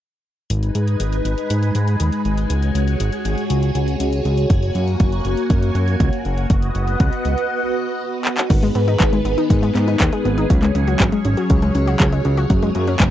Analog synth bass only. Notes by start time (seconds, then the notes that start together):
0.50 G#1
0.75 G#2
1.00 G#1
1.25 G#1
1.50 G#2
1.75 G#2
2.00 D#2
2.25 G#1
2.50 C#2
2.75 C#2
3.00 G#1
3.25 G#1
3.50 C#2
3.75 C#2
4.00 C#2
4.25 C#2
4.50 F#1
4.75 F#2
5.00 F#1
5.25 F#1
5.50 F#2
5.75 F#2
6.00 C#2
6.25 F#1
6.50 F#1
6.75 F#1
7.00 C#2
7.25 C#2
8.50 G#1
8.75 G#2
9.00 G#1
9.25 G#1
9.50 G#2
9.75 G#2
10.00 D#2
10.25 G#1
10.50 C#2
10.75 C#2
11.00 G#1
11.25 G#1
11.50 C#2
11.75 C#2
12.00 C#2
12.25 C#2
12.50 F#1
12.75 F#2
13.00 F#1